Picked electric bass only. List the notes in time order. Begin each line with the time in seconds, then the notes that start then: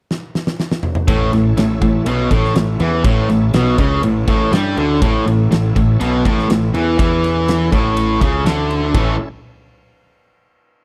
1.08 A1
1.33 A1
1.58 A1
1.81 A1
2.06 B1
2.31 A1
2.56 A1
2.80 E2
3.04 A1
3.30 A1
3.54 B1
3.78 C#2
4.04 A1
4.28 A1
4.52 G2
4.77 D2
5.02 A1
5.26 A1
5.51 A1
5.76 A1
6.01 B1
6.25 A1
6.49 A1
6.75 E2
6.99 E2
7.72 A1
8.21 C#2
8.45 D2
8.95 A1